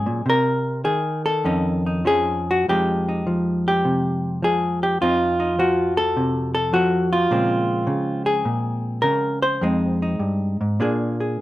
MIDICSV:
0, 0, Header, 1, 2, 480
1, 0, Start_track
1, 0, Key_signature, -4, "minor"
1, 0, Tempo, 587084
1, 209, Time_signature, 4, 2, 24, 8
1, 1172, Tempo, 612245
1, 2612, Tempo, 575816
1, 7412, Tempo, 591716
1, 9347, End_track
2, 0, Start_track
2, 0, Title_t, "Hollow-body jazz guitar"
2, 0, Program_c, 0, 26
2, 0, Note_on_c, 0, 54, 70
2, 0, Note_on_c, 0, 61, 51
2, 0, Note_on_c, 0, 68, 100
2, 51, Note_on_c, 0, 46, 64
2, 185, Note_off_c, 0, 54, 0
2, 191, Note_off_c, 0, 61, 0
2, 207, Note_off_c, 0, 46, 0
2, 210, Note_on_c, 0, 48, 69
2, 215, Note_off_c, 0, 68, 0
2, 241, Note_on_c, 0, 70, 101
2, 686, Note_off_c, 0, 48, 0
2, 690, Note_off_c, 0, 70, 0
2, 690, Note_on_c, 0, 51, 63
2, 693, Note_on_c, 0, 68, 80
2, 1014, Note_off_c, 0, 68, 0
2, 1027, Note_on_c, 0, 69, 80
2, 1180, Note_on_c, 0, 41, 78
2, 1188, Note_on_c, 0, 61, 48
2, 1192, Note_on_c, 0, 63, 48
2, 1501, Note_off_c, 0, 63, 0
2, 1510, Note_on_c, 0, 63, 44
2, 1651, Note_off_c, 0, 51, 0
2, 1652, Note_off_c, 0, 61, 0
2, 1654, Note_on_c, 0, 53, 56
2, 1661, Note_on_c, 0, 61, 43
2, 1666, Note_off_c, 0, 69, 0
2, 1672, Note_on_c, 0, 68, 96
2, 2010, Note_off_c, 0, 63, 0
2, 2013, Note_on_c, 0, 66, 85
2, 2124, Note_off_c, 0, 53, 0
2, 2127, Note_off_c, 0, 61, 0
2, 2143, Note_off_c, 0, 41, 0
2, 2151, Note_off_c, 0, 68, 0
2, 2152, Note_on_c, 0, 41, 57
2, 2157, Note_off_c, 0, 66, 0
2, 2158, Note_on_c, 0, 53, 42
2, 2160, Note_on_c, 0, 67, 82
2, 2165, Note_on_c, 0, 63, 41
2, 2166, Note_on_c, 0, 56, 42
2, 2464, Note_off_c, 0, 63, 0
2, 2467, Note_on_c, 0, 63, 44
2, 2606, Note_off_c, 0, 53, 0
2, 2609, Note_on_c, 0, 53, 61
2, 2942, Note_off_c, 0, 67, 0
2, 2952, Note_on_c, 0, 67, 86
2, 3094, Note_on_c, 0, 48, 61
2, 3571, Note_off_c, 0, 53, 0
2, 3574, Note_on_c, 0, 53, 55
2, 3582, Note_off_c, 0, 48, 0
2, 3586, Note_off_c, 0, 67, 0
2, 3590, Note_on_c, 0, 68, 85
2, 3909, Note_off_c, 0, 68, 0
2, 3913, Note_on_c, 0, 67, 74
2, 4053, Note_off_c, 0, 63, 0
2, 4055, Note_off_c, 0, 41, 0
2, 4064, Note_on_c, 0, 41, 61
2, 4065, Note_off_c, 0, 67, 0
2, 4068, Note_off_c, 0, 53, 0
2, 4068, Note_on_c, 0, 65, 86
2, 4071, Note_on_c, 0, 53, 45
2, 4074, Note_off_c, 0, 56, 0
2, 4077, Note_on_c, 0, 60, 42
2, 4083, Note_on_c, 0, 63, 44
2, 4375, Note_off_c, 0, 63, 0
2, 4385, Note_on_c, 0, 63, 49
2, 4540, Note_off_c, 0, 53, 0
2, 4543, Note_on_c, 0, 53, 64
2, 4547, Note_off_c, 0, 63, 0
2, 4550, Note_on_c, 0, 66, 80
2, 4862, Note_off_c, 0, 65, 0
2, 4865, Note_on_c, 0, 69, 101
2, 5026, Note_on_c, 0, 48, 70
2, 5332, Note_off_c, 0, 69, 0
2, 5342, Note_on_c, 0, 69, 90
2, 5351, Note_off_c, 0, 66, 0
2, 5492, Note_off_c, 0, 53, 0
2, 5496, Note_on_c, 0, 53, 55
2, 5501, Note_on_c, 0, 66, 93
2, 5506, Note_off_c, 0, 48, 0
2, 5823, Note_off_c, 0, 69, 0
2, 5826, Note_on_c, 0, 65, 76
2, 5974, Note_off_c, 0, 41, 0
2, 5977, Note_on_c, 0, 46, 63
2, 5980, Note_on_c, 0, 49, 46
2, 5981, Note_off_c, 0, 60, 0
2, 5981, Note_off_c, 0, 66, 0
2, 5984, Note_on_c, 0, 56, 43
2, 5991, Note_on_c, 0, 60, 50
2, 6435, Note_off_c, 0, 49, 0
2, 6445, Note_on_c, 0, 49, 62
2, 6458, Note_off_c, 0, 46, 0
2, 6769, Note_off_c, 0, 65, 0
2, 6772, Note_on_c, 0, 68, 79
2, 6929, Note_off_c, 0, 49, 0
2, 6930, Note_on_c, 0, 46, 67
2, 7401, Note_off_c, 0, 68, 0
2, 7404, Note_on_c, 0, 70, 92
2, 7410, Note_off_c, 0, 46, 0
2, 7417, Note_on_c, 0, 49, 62
2, 7726, Note_off_c, 0, 70, 0
2, 7733, Note_on_c, 0, 72, 91
2, 7868, Note_off_c, 0, 49, 0
2, 7884, Note_off_c, 0, 56, 0
2, 7887, Note_off_c, 0, 60, 0
2, 7887, Note_on_c, 0, 41, 73
2, 7894, Note_off_c, 0, 53, 0
2, 7897, Note_on_c, 0, 56, 47
2, 7901, Note_on_c, 0, 60, 47
2, 7905, Note_on_c, 0, 63, 42
2, 8210, Note_off_c, 0, 63, 0
2, 8219, Note_on_c, 0, 63, 49
2, 8355, Note_off_c, 0, 41, 0
2, 8358, Note_on_c, 0, 43, 62
2, 8685, Note_off_c, 0, 43, 0
2, 8688, Note_off_c, 0, 72, 0
2, 8692, Note_on_c, 0, 44, 58
2, 8832, Note_off_c, 0, 56, 0
2, 8832, Note_off_c, 0, 60, 0
2, 8832, Note_off_c, 0, 63, 0
2, 8847, Note_off_c, 0, 44, 0
2, 8847, Note_on_c, 0, 46, 72
2, 8852, Note_on_c, 0, 58, 45
2, 8855, Note_on_c, 0, 62, 47
2, 8862, Note_on_c, 0, 68, 52
2, 9167, Note_off_c, 0, 68, 0
2, 9177, Note_on_c, 0, 68, 40
2, 9334, Note_off_c, 0, 46, 0
2, 9347, Note_off_c, 0, 58, 0
2, 9347, Note_off_c, 0, 62, 0
2, 9347, Note_off_c, 0, 68, 0
2, 9347, End_track
0, 0, End_of_file